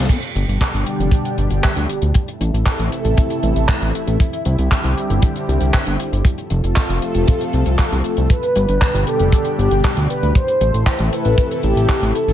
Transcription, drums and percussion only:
0.09 kick, closed hi-hat, crash
0.22 closed hi-hat
0.36 closed hi-hat
0.49 closed hi-hat
0.61 kick, clap, closed hi-hat
0.74 closed hi-hat
0.86 closed hi-hat
1.00 closed hi-hat
1.11 kick, closed hi-hat
1.25 closed hi-hat
1.38 closed hi-hat
1.50 closed hi-hat
1.64 kick, clap, closed hi-hat
1.77 closed hi-hat
1.89 closed hi-hat
2.02 closed hi-hat
2.14 kick, closed hi-hat
2.28 closed hi-hat
2.41 closed hi-hat
2.54 closed hi-hat
2.66 kick, clap, closed hi-hat
2.79 closed hi-hat
2.92 closed hi-hat
3.05 closed hi-hat
3.17 kick, closed hi-hat
3.30 closed hi-hat
3.43 closed hi-hat
3.56 closed hi-hat
3.68 kick, clap, closed hi-hat
3.82 closed hi-hat
3.95 closed hi-hat
4.07 closed hi-hat
4.20 kick, closed hi-hat
4.33 closed hi-hat
4.45 closed hi-hat
4.58 closed hi-hat
4.71 kick, clap, closed hi-hat
4.84 closed hi-hat
4.97 closed hi-hat
5.10 closed hi-hat
5.22 kick, closed hi-hat
5.36 closed hi-hat
5.49 closed hi-hat
5.61 closed hi-hat
5.74 kick, clap, closed hi-hat
5.87 closed hi-hat
6.00 closed hi-hat
6.13 closed hi-hat
6.25 kick, closed hi-hat
6.38 closed hi-hat
6.50 closed hi-hat
6.64 closed hi-hat
6.76 kick, clap, closed hi-hat
6.90 closed hi-hat
7.02 closed hi-hat
7.15 closed hi-hat
7.28 kick, closed hi-hat
7.41 closed hi-hat
7.53 closed hi-hat
7.66 closed hi-hat
7.79 kick, clap, closed hi-hat
7.92 closed hi-hat
8.04 closed hi-hat
8.17 closed hi-hat
8.30 kick, closed hi-hat
8.43 closed hi-hat
8.56 closed hi-hat
8.69 closed hi-hat
8.81 kick, clap, closed hi-hat
8.95 closed hi-hat
9.07 closed hi-hat
9.20 closed hi-hat
9.32 kick, closed hi-hat
9.45 closed hi-hat
9.59 closed hi-hat
9.71 closed hi-hat
9.84 kick, clap, closed hi-hat
9.97 closed hi-hat
10.10 closed hi-hat
10.23 closed hi-hat
10.35 kick, closed hi-hat
10.48 closed hi-hat
10.61 closed hi-hat
10.74 closed hi-hat
10.86 kick, clap, closed hi-hat
10.99 closed hi-hat
11.13 closed hi-hat
11.25 closed hi-hat
11.38 kick, closed hi-hat
11.51 closed hi-hat
11.63 closed hi-hat
11.77 closed hi-hat
11.89 kick, clap, closed hi-hat
12.03 closed hi-hat
12.15 closed hi-hat
12.28 closed hi-hat

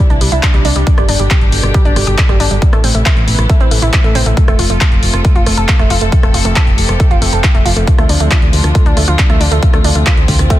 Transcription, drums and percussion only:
0.10 closed hi-hat
0.21 open hi-hat
0.32 closed hi-hat
0.43 kick, clap, closed hi-hat
0.54 closed hi-hat
0.65 open hi-hat
0.76 closed hi-hat
0.87 kick, closed hi-hat
0.98 cross-stick, closed hi-hat
1.09 open hi-hat
1.20 closed hi-hat
1.31 kick, clap, closed hi-hat
1.41 closed hi-hat
1.52 open hi-hat
1.63 cross-stick, closed hi-hat
1.74 kick, closed hi-hat
1.85 closed hi-hat
1.96 cross-stick, open hi-hat
2.07 closed hi-hat
2.18 kick, clap, closed hi-hat
2.29 cross-stick, closed hi-hat
2.40 open hi-hat
2.51 closed hi-hat
2.62 kick, closed hi-hat
2.73 cross-stick, closed hi-hat
2.84 open hi-hat
2.95 closed hi-hat
3.06 kick, clap, closed hi-hat
3.17 closed hi-hat
3.28 open hi-hat
3.39 cross-stick, closed hi-hat
3.50 kick, closed hi-hat
3.60 closed hi-hat
3.71 open hi-hat
3.82 closed hi-hat
3.93 kick, clap, closed hi-hat
4.04 closed hi-hat
4.15 open hi-hat
4.26 closed hi-hat
4.37 kick, closed hi-hat
4.48 cross-stick, closed hi-hat
4.59 open hi-hat
4.70 closed hi-hat
4.81 kick, clap, closed hi-hat
4.92 closed hi-hat
5.03 open hi-hat
5.14 cross-stick, closed hi-hat
5.25 kick, closed hi-hat
5.36 closed hi-hat
5.46 cross-stick, open hi-hat
5.58 closed hi-hat
5.68 kick, clap, closed hi-hat
5.79 cross-stick, closed hi-hat
5.90 open hi-hat
6.01 closed hi-hat
6.12 kick, closed hi-hat
6.23 cross-stick, closed hi-hat
6.34 open hi-hat
6.45 closed hi-hat
6.56 kick, clap, closed hi-hat
6.67 closed hi-hat
6.78 open hi-hat
6.89 cross-stick, closed hi-hat
7.00 kick, closed hi-hat
7.11 closed hi-hat
7.22 open hi-hat
7.33 closed hi-hat
7.44 kick, clap, closed hi-hat
7.55 closed hi-hat
7.66 open hi-hat
7.77 closed hi-hat
7.87 kick, closed hi-hat
7.98 cross-stick, closed hi-hat
8.09 open hi-hat
8.20 closed hi-hat
8.31 kick, clap, closed hi-hat
8.42 closed hi-hat
8.53 open hi-hat
8.64 cross-stick, closed hi-hat
8.75 kick, closed hi-hat
8.86 closed hi-hat
8.97 cross-stick, open hi-hat
9.08 closed hi-hat
9.19 kick, clap, closed hi-hat
9.30 cross-stick, closed hi-hat
9.41 open hi-hat
9.52 closed hi-hat
9.63 kick, closed hi-hat
9.73 cross-stick, closed hi-hat
9.84 open hi-hat
9.95 closed hi-hat
10.06 kick, clap, closed hi-hat
10.17 closed hi-hat
10.28 kick, open hi-hat
10.39 cross-stick, closed hi-hat
10.50 kick, closed hi-hat

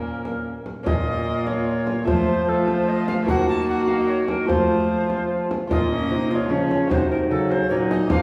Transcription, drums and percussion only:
0.25 frame drum
0.66 frame drum
0.86 frame drum
1.47 frame drum
1.87 frame drum
2.07 frame drum
2.68 frame drum
3.08 frame drum
3.28 frame drum
3.88 frame drum
4.28 frame drum
4.49 frame drum
5.10 frame drum
5.51 frame drum
5.71 frame drum
6.31 frame drum
6.71 frame drum
6.91 frame drum
7.52 frame drum
7.91 frame drum
8.10 frame drum

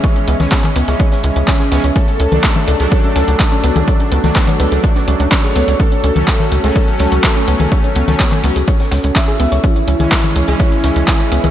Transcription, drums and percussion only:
0.04 kick, closed hi-hat
0.16 closed hi-hat
0.28 closed hi-hat
0.40 snare, closed hi-hat, low conga
0.52 kick, snare, clap, closed hi-hat
0.64 clap, closed hi-hat, low conga
0.76 closed hi-hat, open hi-hat
0.88 closed hi-hat
1.00 kick, closed hi-hat
1.12 snare, closed hi-hat
1.23 closed hi-hat
1.36 closed hi-hat
1.48 kick, snare, clap, closed hi-hat
1.60 snare, closed hi-hat
1.72 snare, closed hi-hat
1.84 closed hi-hat
1.96 kick, closed hi-hat
2.08 closed hi-hat
2.20 closed hi-hat
2.32 closed hi-hat, low conga
2.43 kick, snare, clap, closed hi-hat
2.56 closed hi-hat, low conga
2.68 closed hi-hat
2.80 closed hi-hat
2.91 kick, closed hi-hat
3.04 closed hi-hat
3.16 snare, closed hi-hat
3.28 closed hi-hat
3.39 kick, snare, clap, closed hi-hat
3.52 closed hi-hat
3.63 closed hi-hat
3.76 closed hi-hat, low conga
3.88 kick, closed hi-hat
4.00 closed hi-hat
4.12 closed hi-hat
4.24 snare, closed hi-hat, low conga
4.35 kick, snare, clap, closed hi-hat
4.48 clap, closed hi-hat, low conga
4.60 closed hi-hat, open hi-hat
4.72 closed hi-hat
4.84 kick, closed hi-hat
4.96 snare, closed hi-hat
5.08 closed hi-hat
5.20 closed hi-hat
5.32 kick, snare, clap, closed hi-hat
5.44 snare, closed hi-hat
5.55 snare, closed hi-hat
5.68 closed hi-hat
5.80 kick, closed hi-hat
5.92 closed hi-hat
6.04 closed hi-hat
6.16 closed hi-hat, low conga
6.28 kick, snare, clap, closed hi-hat
6.40 closed hi-hat, low conga
6.52 closed hi-hat
6.64 closed hi-hat
6.76 kick, closed hi-hat
6.88 closed hi-hat
6.99 snare, closed hi-hat
7.12 closed hi-hat
7.24 kick, snare, clap, closed hi-hat
7.36 closed hi-hat
7.48 closed hi-hat
7.60 closed hi-hat, low conga
7.72 kick, closed hi-hat
7.84 closed hi-hat
7.95 closed hi-hat
8.08 snare, closed hi-hat, low conga
8.19 kick, snare, clap, closed hi-hat
8.32 clap, closed hi-hat, low conga
8.44 closed hi-hat, open hi-hat
8.56 closed hi-hat
8.68 kick, closed hi-hat
8.80 snare, closed hi-hat
8.91 snare, closed hi-hat
9.04 closed hi-hat
9.16 kick, clap, closed hi-hat
9.28 closed hi-hat
9.40 closed hi-hat
9.52 closed hi-hat
9.64 kick, closed hi-hat
9.76 closed hi-hat
9.88 closed hi-hat
10.00 closed hi-hat, low conga
10.11 kick, snare, clap, closed hi-hat
10.24 closed hi-hat, low conga
10.36 closed hi-hat
10.47 closed hi-hat
10.60 kick, closed hi-hat
10.72 closed hi-hat
10.84 snare, closed hi-hat
10.96 closed hi-hat
11.08 kick, snare, clap, closed hi-hat
11.20 closed hi-hat
11.32 closed hi-hat
11.44 closed hi-hat, low conga

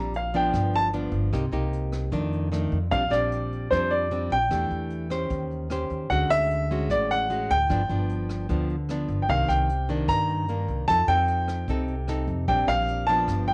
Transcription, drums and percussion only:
0.14 closed hi-hat
0.33 closed hi-hat
0.53 kick, cross-stick, closed hi-hat
0.73 closed hi-hat
0.93 closed hi-hat
1.13 closed hi-hat
1.33 kick, cross-stick, closed hi-hat
1.53 closed hi-hat
1.73 closed hi-hat
1.92 cross-stick, closed hi-hat
2.12 kick, closed hi-hat
2.33 closed hi-hat
2.53 cross-stick, closed hi-hat
2.72 closed hi-hat
2.92 kick, closed hi-hat
3.12 cross-stick, closed hi-hat
3.32 closed hi-hat
3.52 closed hi-hat
3.72 kick, cross-stick, closed hi-hat
3.91 closed hi-hat
4.11 closed hi-hat
4.31 closed hi-hat
4.51 kick, cross-stick, closed hi-hat
4.71 closed hi-hat
4.90 closed hi-hat
5.10 cross-stick, closed hi-hat
5.30 kick, closed hi-hat
5.51 closed hi-hat
5.70 cross-stick, closed hi-hat
5.90 closed hi-hat
6.10 kick, closed hi-hat
6.30 cross-stick
6.50 closed hi-hat
6.70 closed hi-hat
6.90 kick, cross-stick, closed hi-hat
7.10 closed hi-hat
7.30 closed hi-hat
7.50 closed hi-hat
7.70 kick, cross-stick, closed hi-hat
7.89 closed hi-hat
8.09 closed hi-hat
8.29 cross-stick, closed hi-hat
8.49 kick, closed hi-hat
8.69 closed hi-hat
8.89 cross-stick, closed hi-hat
9.09 closed hi-hat
9.29 kick, closed hi-hat
9.49 cross-stick, closed hi-hat
9.69 closed hi-hat
9.89 closed hi-hat
10.08 kick, cross-stick, closed hi-hat
10.28 closed hi-hat
10.48 closed hi-hat
10.68 closed hi-hat
10.88 kick, cross-stick, closed hi-hat
11.08 closed hi-hat
11.28 closed hi-hat
11.48 cross-stick, closed hi-hat
11.68 kick, closed hi-hat
11.88 closed hi-hat
12.08 cross-stick, closed hi-hat
12.28 closed hi-hat
12.48 kick, closed hi-hat
12.68 cross-stick
12.88 closed hi-hat
13.08 closed hi-hat
13.28 kick, cross-stick, closed hi-hat
13.47 closed hi-hat

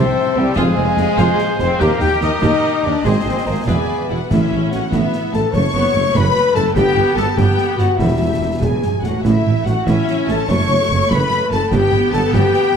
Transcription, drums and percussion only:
0.56 concert bass drum, snare
0.97 snare
1.18 concert bass drum, snare
1.39 snare
1.59 snare
1.80 concert bass drum, snare
2.00 snare
2.21 snare
2.42 concert bass drum, snare
3.05 concert bass drum, snare
3.68 concert bass drum, snare
4.31 concert bass drum, snare, crash
4.72 snare
4.92 concert bass drum, snare
5.13 snare
5.34 snare
5.54 concert bass drum, snare
6.15 concert bass drum, snare
6.35 snare
6.55 snare
6.76 concert bass drum, snare, crash
7.17 snare
7.38 concert bass drum, snare
7.58 snare
7.79 snare
7.99 concert bass drum, snare
8.61 concert bass drum, snare
8.82 snare
9.04 snare
9.25 concert bass drum, snare, crash
9.66 snare
9.87 concert bass drum, snare
10.08 snare
10.28 snare
10.49 concert bass drum, snare
11.11 concert bass drum, snare
11.31 snare
11.52 snare
11.71 concert bass drum, snare, crash
12.13 snare
12.33 concert bass drum, snare
12.54 snare

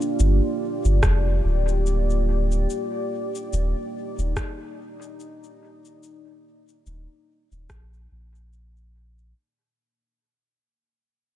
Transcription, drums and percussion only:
0.01 shaker
0.20 shaker
0.85 shaker
1.03 kick, cross-stick, shaker
1.68 shaker
1.86 shaker
2.10 shaker
2.52 shaker
2.70 shaker
3.35 shaker
3.53 shaker
4.19 shaker
4.37 kick, cross-stick, shaker
5.02 shaker
5.20 shaker
5.44 shaker
5.85 shaker
6.03 shaker
6.68 shaker
6.86 shaker
7.52 shaker
7.70 kick, cross-stick, shaker
7.93 shaker
8.35 shaker
8.53 shaker
8.77 shaker
9.18 shaker

